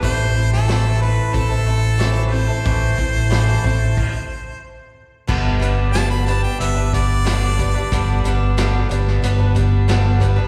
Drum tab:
CC |----------------|--------x-------|x---------------|----------------|
HH |x---x---x---x---|x---x-----------|--x-x-x-x-x-x-x-|x-x-x-x-x-x-x-x-|
SD |---oo-------o---|----o-----------|----o-------o---|----o--o----o---|
BD |o-------o-------|o-o---o-o-------|o---------o---o-|o---------o---o-|